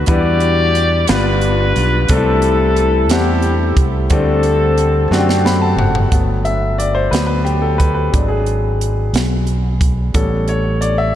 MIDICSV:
0, 0, Header, 1, 5, 480
1, 0, Start_track
1, 0, Key_signature, 1, "major"
1, 0, Tempo, 671141
1, 57, Time_signature, 6, 3, 24, 8
1, 7974, End_track
2, 0, Start_track
2, 0, Title_t, "Horn section"
2, 0, Program_c, 0, 61
2, 69, Note_on_c, 0, 66, 80
2, 76, Note_on_c, 0, 67, 86
2, 80, Note_on_c, 0, 74, 115
2, 754, Note_off_c, 0, 66, 0
2, 758, Note_off_c, 0, 67, 0
2, 788, Note_off_c, 0, 74, 0
2, 793, Note_on_c, 0, 62, 74
2, 793, Note_on_c, 0, 65, 74
2, 800, Note_on_c, 0, 71, 100
2, 1476, Note_off_c, 0, 62, 0
2, 1476, Note_off_c, 0, 65, 0
2, 1508, Note_off_c, 0, 71, 0
2, 1512, Note_on_c, 0, 64, 73
2, 1520, Note_on_c, 0, 69, 104
2, 2195, Note_off_c, 0, 64, 0
2, 2227, Note_off_c, 0, 69, 0
2, 2228, Note_on_c, 0, 64, 67
2, 2229, Note_on_c, 0, 67, 88
2, 2722, Note_off_c, 0, 67, 0
2, 2824, Note_off_c, 0, 64, 0
2, 2945, Note_on_c, 0, 69, 92
2, 2946, Note_on_c, 0, 60, 66
2, 3871, Note_off_c, 0, 60, 0
2, 3871, Note_off_c, 0, 69, 0
2, 7974, End_track
3, 0, Start_track
3, 0, Title_t, "Grand piano"
3, 0, Program_c, 1, 0
3, 0, Control_c, 1, 64, 127
3, 0, Note_on_c, 1, 57, 72
3, 0, Note_on_c, 1, 62, 60
3, 0, Note_on_c, 1, 66, 61
3, 0, Note_on_c, 1, 71, 72
3, 48, Note_on_c, 1, 55, 76
3, 53, Note_off_c, 1, 62, 0
3, 53, Note_on_c, 1, 62, 69
3, 53, Note_on_c, 1, 64, 67
3, 55, Note_on_c, 1, 52, 59
3, 56, Note_on_c, 1, 78, 65
3, 59, Note_off_c, 1, 71, 0
3, 59, Note_on_c, 1, 71, 81
3, 67, Control_c, 1, 64, 0
3, 73, Note_off_c, 1, 57, 0
3, 74, Note_off_c, 1, 66, 0
3, 185, Control_c, 1, 64, 127
3, 715, Note_off_c, 1, 55, 0
3, 717, Note_off_c, 1, 62, 0
3, 717, Note_off_c, 1, 64, 0
3, 719, Note_off_c, 1, 78, 0
3, 720, Note_off_c, 1, 71, 0
3, 747, Note_off_c, 1, 52, 0
3, 774, Note_on_c, 1, 55, 67
3, 777, Note_on_c, 1, 62, 60
3, 778, Note_on_c, 1, 59, 59
3, 780, Note_on_c, 1, 43, 65
3, 784, Control_c, 1, 64, 0
3, 785, Note_on_c, 1, 65, 59
3, 786, Note_on_c, 1, 71, 76
3, 908, Control_c, 1, 64, 127
3, 1437, Note_off_c, 1, 55, 0
3, 1439, Note_off_c, 1, 59, 0
3, 1439, Note_off_c, 1, 62, 0
3, 1443, Note_off_c, 1, 65, 0
3, 1443, Note_off_c, 1, 71, 0
3, 1469, Note_off_c, 1, 43, 0
3, 1494, Note_on_c, 1, 55, 76
3, 1498, Note_on_c, 1, 57, 70
3, 1500, Note_on_c, 1, 48, 60
3, 1501, Note_on_c, 1, 60, 67
3, 1502, Note_on_c, 1, 62, 52
3, 1506, Note_on_c, 1, 69, 80
3, 1507, Control_c, 1, 64, 0
3, 1545, Note_off_c, 1, 62, 0
3, 1548, Note_on_c, 1, 64, 69
3, 1630, Control_c, 1, 64, 127
3, 2157, Note_off_c, 1, 55, 0
3, 2159, Note_off_c, 1, 57, 0
3, 2161, Note_off_c, 1, 60, 0
3, 2163, Note_off_c, 1, 69, 0
3, 2184, Note_off_c, 1, 64, 0
3, 2189, Note_off_c, 1, 48, 0
3, 2219, Note_on_c, 1, 55, 68
3, 2221, Note_on_c, 1, 57, 59
3, 2225, Note_on_c, 1, 60, 59
3, 2226, Note_on_c, 1, 64, 62
3, 2229, Note_on_c, 1, 78, 72
3, 2880, Note_off_c, 1, 55, 0
3, 2880, Note_off_c, 1, 57, 0
3, 2883, Note_off_c, 1, 60, 0
3, 2883, Note_off_c, 1, 64, 0
3, 2884, Note_off_c, 1, 78, 0
3, 2933, Note_on_c, 1, 55, 77
3, 2937, Note_on_c, 1, 57, 73
3, 2939, Note_on_c, 1, 60, 69
3, 2941, Note_on_c, 1, 50, 62
3, 2941, Note_on_c, 1, 62, 66
3, 2944, Control_c, 1, 64, 0
3, 2947, Note_on_c, 1, 69, 82
3, 3051, Control_c, 1, 64, 127
3, 3596, Note_off_c, 1, 55, 0
3, 3598, Note_off_c, 1, 57, 0
3, 3599, Note_off_c, 1, 60, 0
3, 3600, Note_off_c, 1, 62, 0
3, 3603, Note_off_c, 1, 69, 0
3, 3629, Note_off_c, 1, 50, 0
3, 3657, Note_on_c, 1, 57, 74
3, 3658, Note_on_c, 1, 50, 81
3, 3661, Note_on_c, 1, 60, 69
3, 3663, Note_on_c, 1, 62, 71
3, 3666, Note_on_c, 1, 66, 64
3, 3706, Note_off_c, 1, 66, 0
3, 3710, Note_on_c, 1, 67, 82
3, 3899, Note_on_c, 1, 83, 69
3, 4008, Note_off_c, 1, 83, 0
3, 4017, Note_on_c, 1, 81, 66
3, 4127, Note_off_c, 1, 81, 0
3, 4137, Note_on_c, 1, 78, 67
3, 4318, Note_off_c, 1, 57, 0
3, 4319, Note_off_c, 1, 50, 0
3, 4320, Note_off_c, 1, 60, 0
3, 4321, Note_off_c, 1, 62, 0
3, 4345, Note_off_c, 1, 67, 0
3, 4359, Note_off_c, 1, 78, 0
3, 4374, Note_on_c, 1, 54, 45
3, 4380, Note_on_c, 1, 57, 44
3, 4381, Note_on_c, 1, 59, 51
3, 4384, Control_c, 1, 64, 0
3, 4512, Control_c, 1, 64, 127
3, 4612, Note_on_c, 1, 76, 88
3, 4852, Note_on_c, 1, 74, 83
3, 4860, Note_off_c, 1, 76, 0
3, 4965, Note_off_c, 1, 74, 0
3, 4968, Note_on_c, 1, 72, 84
3, 5081, Note_off_c, 1, 54, 0
3, 5083, Note_off_c, 1, 72, 0
3, 5085, Note_on_c, 1, 71, 80
3, 5088, Note_off_c, 1, 57, 0
3, 5090, Note_off_c, 1, 59, 0
3, 5092, Note_on_c, 1, 54, 42
3, 5099, Note_on_c, 1, 57, 38
3, 5100, Note_on_c, 1, 59, 48
3, 5187, Note_off_c, 1, 71, 0
3, 5198, Note_on_c, 1, 71, 78
3, 5309, Note_off_c, 1, 54, 0
3, 5313, Note_off_c, 1, 57, 0
3, 5314, Note_off_c, 1, 59, 0
3, 5326, Note_on_c, 1, 67, 75
3, 5330, Note_off_c, 1, 71, 0
3, 5448, Note_on_c, 1, 69, 70
3, 5454, Note_off_c, 1, 67, 0
3, 5565, Note_on_c, 1, 71, 78
3, 5575, Note_off_c, 1, 69, 0
3, 5670, Note_off_c, 1, 71, 0
3, 5680, Note_on_c, 1, 71, 73
3, 5810, Note_on_c, 1, 54, 49
3, 5815, Note_on_c, 1, 56, 43
3, 5816, Note_on_c, 1, 62, 50
3, 5825, Control_c, 1, 64, 0
3, 5925, Note_on_c, 1, 68, 67
3, 5935, Note_off_c, 1, 71, 0
3, 5960, Control_c, 1, 64, 127
3, 6504, Note_off_c, 1, 54, 0
3, 6506, Note_off_c, 1, 56, 0
3, 6507, Note_off_c, 1, 62, 0
3, 6621, Note_off_c, 1, 68, 0
3, 7255, Note_on_c, 1, 55, 52
3, 7256, Note_on_c, 1, 59, 45
3, 7261, Note_on_c, 1, 61, 57
3, 7262, Note_on_c, 1, 69, 83
3, 7264, Control_c, 1, 64, 0
3, 7379, Control_c, 1, 64, 127
3, 7482, Note_off_c, 1, 69, 0
3, 7501, Note_on_c, 1, 73, 81
3, 7574, Note_off_c, 1, 55, 0
3, 7575, Note_off_c, 1, 59, 0
3, 7578, Note_off_c, 1, 61, 0
3, 7731, Note_on_c, 1, 74, 82
3, 7745, Note_off_c, 1, 73, 0
3, 7854, Note_on_c, 1, 76, 87
3, 7857, Note_off_c, 1, 74, 0
3, 7974, Note_off_c, 1, 76, 0
3, 7974, End_track
4, 0, Start_track
4, 0, Title_t, "Fingered electric bass"
4, 0, Program_c, 2, 33
4, 57, Note_on_c, 2, 40, 101
4, 748, Note_off_c, 2, 40, 0
4, 785, Note_on_c, 2, 31, 105
4, 1232, Note_off_c, 2, 31, 0
4, 1260, Note_on_c, 2, 35, 87
4, 1479, Note_off_c, 2, 35, 0
4, 1497, Note_on_c, 2, 36, 103
4, 2216, Note_off_c, 2, 36, 0
4, 2216, Note_on_c, 2, 40, 95
4, 2667, Note_off_c, 2, 40, 0
4, 2692, Note_on_c, 2, 36, 82
4, 2914, Note_off_c, 2, 36, 0
4, 2933, Note_on_c, 2, 38, 107
4, 3625, Note_off_c, 2, 38, 0
4, 3654, Note_on_c, 2, 42, 93
4, 4106, Note_off_c, 2, 42, 0
4, 4123, Note_on_c, 2, 30, 85
4, 4349, Note_off_c, 2, 30, 0
4, 4374, Note_on_c, 2, 31, 83
4, 5065, Note_off_c, 2, 31, 0
4, 5090, Note_on_c, 2, 38, 78
4, 5784, Note_off_c, 2, 38, 0
4, 5817, Note_on_c, 2, 32, 87
4, 6507, Note_off_c, 2, 32, 0
4, 6532, Note_on_c, 2, 35, 86
4, 7225, Note_off_c, 2, 35, 0
4, 7253, Note_on_c, 2, 33, 97
4, 7946, Note_off_c, 2, 33, 0
4, 7974, End_track
5, 0, Start_track
5, 0, Title_t, "Drums"
5, 45, Note_on_c, 9, 42, 91
5, 57, Note_on_c, 9, 36, 113
5, 117, Note_off_c, 9, 42, 0
5, 128, Note_off_c, 9, 36, 0
5, 289, Note_on_c, 9, 42, 54
5, 360, Note_off_c, 9, 42, 0
5, 537, Note_on_c, 9, 42, 74
5, 608, Note_off_c, 9, 42, 0
5, 769, Note_on_c, 9, 42, 92
5, 781, Note_on_c, 9, 38, 110
5, 840, Note_off_c, 9, 42, 0
5, 853, Note_off_c, 9, 38, 0
5, 1012, Note_on_c, 9, 42, 45
5, 1083, Note_off_c, 9, 42, 0
5, 1258, Note_on_c, 9, 42, 71
5, 1329, Note_off_c, 9, 42, 0
5, 1491, Note_on_c, 9, 42, 84
5, 1498, Note_on_c, 9, 36, 109
5, 1562, Note_off_c, 9, 42, 0
5, 1570, Note_off_c, 9, 36, 0
5, 1731, Note_on_c, 9, 42, 57
5, 1802, Note_off_c, 9, 42, 0
5, 1978, Note_on_c, 9, 42, 72
5, 2049, Note_off_c, 9, 42, 0
5, 2213, Note_on_c, 9, 42, 91
5, 2226, Note_on_c, 9, 38, 106
5, 2285, Note_off_c, 9, 42, 0
5, 2297, Note_off_c, 9, 38, 0
5, 2449, Note_on_c, 9, 42, 43
5, 2521, Note_off_c, 9, 42, 0
5, 2694, Note_on_c, 9, 36, 88
5, 2694, Note_on_c, 9, 42, 71
5, 2765, Note_off_c, 9, 36, 0
5, 2766, Note_off_c, 9, 42, 0
5, 2931, Note_on_c, 9, 42, 88
5, 2936, Note_on_c, 9, 36, 114
5, 3002, Note_off_c, 9, 42, 0
5, 3008, Note_off_c, 9, 36, 0
5, 3169, Note_on_c, 9, 42, 52
5, 3240, Note_off_c, 9, 42, 0
5, 3416, Note_on_c, 9, 42, 72
5, 3488, Note_off_c, 9, 42, 0
5, 3662, Note_on_c, 9, 38, 55
5, 3734, Note_off_c, 9, 38, 0
5, 3786, Note_on_c, 9, 38, 58
5, 3857, Note_off_c, 9, 38, 0
5, 3905, Note_on_c, 9, 38, 74
5, 3977, Note_off_c, 9, 38, 0
5, 4138, Note_on_c, 9, 43, 86
5, 4209, Note_off_c, 9, 43, 0
5, 4255, Note_on_c, 9, 43, 85
5, 4327, Note_off_c, 9, 43, 0
5, 4376, Note_on_c, 9, 42, 76
5, 4377, Note_on_c, 9, 36, 93
5, 4447, Note_off_c, 9, 42, 0
5, 4448, Note_off_c, 9, 36, 0
5, 4614, Note_on_c, 9, 42, 48
5, 4686, Note_off_c, 9, 42, 0
5, 4861, Note_on_c, 9, 42, 65
5, 4932, Note_off_c, 9, 42, 0
5, 5098, Note_on_c, 9, 42, 83
5, 5111, Note_on_c, 9, 38, 92
5, 5170, Note_off_c, 9, 42, 0
5, 5182, Note_off_c, 9, 38, 0
5, 5339, Note_on_c, 9, 42, 38
5, 5410, Note_off_c, 9, 42, 0
5, 5577, Note_on_c, 9, 36, 77
5, 5580, Note_on_c, 9, 42, 62
5, 5649, Note_off_c, 9, 36, 0
5, 5652, Note_off_c, 9, 42, 0
5, 5819, Note_on_c, 9, 42, 78
5, 5820, Note_on_c, 9, 36, 98
5, 5891, Note_off_c, 9, 36, 0
5, 5891, Note_off_c, 9, 42, 0
5, 6054, Note_on_c, 9, 42, 47
5, 6125, Note_off_c, 9, 42, 0
5, 6303, Note_on_c, 9, 42, 64
5, 6375, Note_off_c, 9, 42, 0
5, 6536, Note_on_c, 9, 42, 80
5, 6549, Note_on_c, 9, 38, 89
5, 6608, Note_off_c, 9, 42, 0
5, 6621, Note_off_c, 9, 38, 0
5, 6772, Note_on_c, 9, 42, 38
5, 6843, Note_off_c, 9, 42, 0
5, 7015, Note_on_c, 9, 36, 82
5, 7018, Note_on_c, 9, 42, 64
5, 7086, Note_off_c, 9, 36, 0
5, 7090, Note_off_c, 9, 42, 0
5, 7255, Note_on_c, 9, 42, 85
5, 7257, Note_on_c, 9, 36, 98
5, 7326, Note_off_c, 9, 42, 0
5, 7328, Note_off_c, 9, 36, 0
5, 7493, Note_on_c, 9, 42, 53
5, 7564, Note_off_c, 9, 42, 0
5, 7737, Note_on_c, 9, 42, 65
5, 7809, Note_off_c, 9, 42, 0
5, 7974, End_track
0, 0, End_of_file